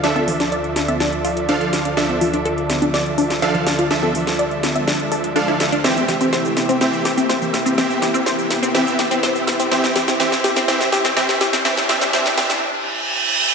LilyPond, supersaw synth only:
\new Staff \with { instrumentName = "Supersaw synth" } { \time 4/4 \key c \mixolydian \tempo 4 = 124 <f d' a' e''>2. <f d' a' f''>4 | <f d' a' e''>2. <f d' a' f''>4 | <f d' a' e''>2. <f d' a' f''>4 | <e c' g' e''>2 <e c' g' e''>2 |
<e c' g' e''>2 <e c' g' e''>2 | <e c' g' e''>4 <e c' g' e''>4 <e c' g' e''>4 <e c' g' e''>4 | <e c' g' e''>8 <e c' g' e''>8 <e c' g' e''>8 <e c' g' e''>8 r2 | }